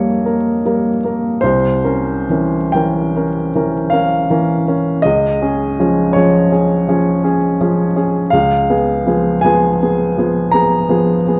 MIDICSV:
0, 0, Header, 1, 2, 480
1, 0, Start_track
1, 0, Tempo, 779221
1, 868, Time_signature, 9, 3, 24, 8
1, 868, Tempo, 874636
1, 1828, Tempo, 762389
1, 2308, Tempo, 749064
1, 3748, Tempo, 729927
1, 7188, End_track
2, 0, Start_track
2, 0, Title_t, "Upright piano"
2, 0, Program_c, 0, 0
2, 0, Control_c, 0, 64, 127
2, 0, Note_on_c, 0, 55, 33
2, 0, Note_on_c, 0, 58, 31
2, 0, Note_on_c, 0, 70, 35
2, 0, Note_on_c, 0, 73, 54
2, 136, Note_off_c, 0, 55, 0
2, 137, Note_off_c, 0, 58, 0
2, 139, Note_off_c, 0, 70, 0
2, 156, Note_on_c, 0, 58, 32
2, 159, Note_on_c, 0, 70, 36
2, 374, Note_off_c, 0, 58, 0
2, 375, Note_off_c, 0, 70, 0
2, 401, Note_on_c, 0, 55, 33
2, 407, Note_on_c, 0, 58, 33
2, 407, Note_on_c, 0, 70, 35
2, 612, Note_off_c, 0, 55, 0
2, 615, Note_off_c, 0, 58, 0
2, 615, Note_off_c, 0, 70, 0
2, 626, Note_off_c, 0, 73, 0
2, 642, Note_on_c, 0, 58, 31
2, 649, Note_on_c, 0, 70, 34
2, 850, Note_off_c, 0, 58, 0
2, 854, Note_off_c, 0, 70, 0
2, 868, Note_on_c, 0, 72, 67
2, 879, Control_c, 0, 64, 0
2, 881, Note_on_c, 0, 36, 44
2, 987, Control_c, 0, 64, 127
2, 1098, Note_off_c, 0, 36, 0
2, 1107, Note_on_c, 0, 61, 34
2, 1107, Note_on_c, 0, 70, 38
2, 1336, Note_off_c, 0, 61, 0
2, 1336, Note_off_c, 0, 70, 0
2, 1355, Note_on_c, 0, 52, 34
2, 1359, Note_on_c, 0, 61, 33
2, 1360, Note_on_c, 0, 70, 33
2, 1583, Note_off_c, 0, 52, 0
2, 1584, Note_off_c, 0, 61, 0
2, 1585, Note_off_c, 0, 70, 0
2, 1588, Note_on_c, 0, 79, 67
2, 1603, Note_off_c, 0, 72, 0
2, 1603, Note_on_c, 0, 52, 34
2, 1605, Note_on_c, 0, 61, 33
2, 1608, Note_on_c, 0, 70, 36
2, 1806, Note_off_c, 0, 52, 0
2, 1808, Note_off_c, 0, 61, 0
2, 1809, Note_off_c, 0, 70, 0
2, 1831, Note_on_c, 0, 61, 30
2, 1833, Note_on_c, 0, 70, 32
2, 2047, Note_off_c, 0, 61, 0
2, 2048, Note_off_c, 0, 70, 0
2, 2077, Note_on_c, 0, 52, 32
2, 2077, Note_on_c, 0, 61, 32
2, 2081, Note_on_c, 0, 70, 36
2, 2288, Note_off_c, 0, 52, 0
2, 2288, Note_off_c, 0, 61, 0
2, 2290, Note_off_c, 0, 70, 0
2, 2294, Note_on_c, 0, 77, 69
2, 2299, Note_off_c, 0, 79, 0
2, 2311, Note_on_c, 0, 61, 34
2, 2314, Note_on_c, 0, 70, 39
2, 2528, Note_off_c, 0, 61, 0
2, 2530, Note_off_c, 0, 70, 0
2, 2552, Note_on_c, 0, 52, 33
2, 2555, Note_on_c, 0, 70, 39
2, 2557, Note_on_c, 0, 61, 34
2, 2768, Note_off_c, 0, 52, 0
2, 2769, Note_off_c, 0, 70, 0
2, 2771, Note_off_c, 0, 61, 0
2, 2793, Note_on_c, 0, 70, 34
2, 2795, Note_on_c, 0, 61, 34
2, 3006, Note_off_c, 0, 70, 0
2, 3007, Note_off_c, 0, 61, 0
2, 3014, Note_on_c, 0, 75, 73
2, 3022, Note_off_c, 0, 77, 0
2, 3032, Note_on_c, 0, 37, 46
2, 3038, Control_c, 0, 64, 0
2, 3156, Control_c, 0, 64, 127
2, 3263, Note_off_c, 0, 37, 0
2, 3269, Note_on_c, 0, 61, 34
2, 3269, Note_on_c, 0, 68, 38
2, 3486, Note_off_c, 0, 61, 0
2, 3486, Note_off_c, 0, 68, 0
2, 3509, Note_on_c, 0, 53, 36
2, 3510, Note_on_c, 0, 68, 36
2, 3512, Note_on_c, 0, 61, 36
2, 3723, Note_off_c, 0, 53, 0
2, 3723, Note_on_c, 0, 73, 68
2, 3724, Note_off_c, 0, 68, 0
2, 3725, Note_off_c, 0, 61, 0
2, 3740, Note_off_c, 0, 75, 0
2, 3741, Note_on_c, 0, 53, 37
2, 3741, Note_on_c, 0, 61, 35
2, 3744, Note_on_c, 0, 68, 39
2, 3959, Note_off_c, 0, 53, 0
2, 3959, Note_off_c, 0, 61, 0
2, 3961, Note_off_c, 0, 68, 0
2, 3979, Note_on_c, 0, 61, 31
2, 3981, Note_on_c, 0, 68, 38
2, 4194, Note_off_c, 0, 61, 0
2, 4196, Note_off_c, 0, 68, 0
2, 4218, Note_on_c, 0, 53, 35
2, 4223, Note_on_c, 0, 68, 39
2, 4224, Note_on_c, 0, 61, 37
2, 4432, Note_off_c, 0, 53, 0
2, 4435, Note_off_c, 0, 61, 0
2, 4435, Note_off_c, 0, 68, 0
2, 4452, Note_on_c, 0, 61, 37
2, 4456, Note_on_c, 0, 68, 41
2, 4667, Note_off_c, 0, 61, 0
2, 4669, Note_off_c, 0, 68, 0
2, 4693, Note_on_c, 0, 61, 34
2, 4694, Note_on_c, 0, 53, 36
2, 4698, Note_on_c, 0, 68, 38
2, 4906, Note_off_c, 0, 61, 0
2, 4907, Note_off_c, 0, 53, 0
2, 4909, Note_off_c, 0, 68, 0
2, 4918, Note_off_c, 0, 73, 0
2, 4927, Note_on_c, 0, 61, 35
2, 4930, Note_on_c, 0, 68, 37
2, 5147, Note_off_c, 0, 61, 0
2, 5149, Note_off_c, 0, 68, 0
2, 5153, Note_on_c, 0, 77, 79
2, 5168, Note_on_c, 0, 37, 49
2, 5183, Control_c, 0, 64, 0
2, 5270, Control_c, 0, 64, 127
2, 5409, Note_off_c, 0, 37, 0
2, 5411, Note_on_c, 0, 59, 36
2, 5416, Note_on_c, 0, 68, 39
2, 5630, Note_off_c, 0, 59, 0
2, 5633, Note_off_c, 0, 68, 0
2, 5651, Note_on_c, 0, 53, 37
2, 5654, Note_on_c, 0, 59, 36
2, 5660, Note_on_c, 0, 68, 38
2, 5869, Note_off_c, 0, 53, 0
2, 5871, Note_off_c, 0, 59, 0
2, 5875, Note_off_c, 0, 68, 0
2, 5881, Note_on_c, 0, 80, 74
2, 5887, Note_off_c, 0, 77, 0
2, 5899, Note_on_c, 0, 53, 37
2, 5905, Note_on_c, 0, 59, 38
2, 5906, Note_on_c, 0, 68, 41
2, 6118, Note_off_c, 0, 53, 0
2, 6122, Note_off_c, 0, 59, 0
2, 6122, Note_off_c, 0, 68, 0
2, 6151, Note_on_c, 0, 59, 36
2, 6155, Note_on_c, 0, 68, 39
2, 6366, Note_off_c, 0, 59, 0
2, 6368, Note_off_c, 0, 68, 0
2, 6385, Note_on_c, 0, 53, 37
2, 6390, Note_on_c, 0, 68, 38
2, 6391, Note_on_c, 0, 59, 37
2, 6598, Note_off_c, 0, 53, 0
2, 6601, Note_off_c, 0, 59, 0
2, 6601, Note_off_c, 0, 68, 0
2, 6607, Note_on_c, 0, 82, 85
2, 6614, Note_off_c, 0, 80, 0
2, 6621, Note_on_c, 0, 59, 39
2, 6625, Note_on_c, 0, 68, 43
2, 6835, Note_off_c, 0, 59, 0
2, 6837, Note_off_c, 0, 68, 0
2, 6854, Note_on_c, 0, 53, 41
2, 6856, Note_on_c, 0, 59, 38
2, 6862, Note_on_c, 0, 68, 44
2, 7076, Note_off_c, 0, 53, 0
2, 7077, Note_off_c, 0, 59, 0
2, 7080, Note_off_c, 0, 68, 0
2, 7109, Note_on_c, 0, 68, 39
2, 7111, Note_on_c, 0, 59, 37
2, 7188, Note_off_c, 0, 59, 0
2, 7188, Note_off_c, 0, 68, 0
2, 7188, Note_off_c, 0, 82, 0
2, 7188, End_track
0, 0, End_of_file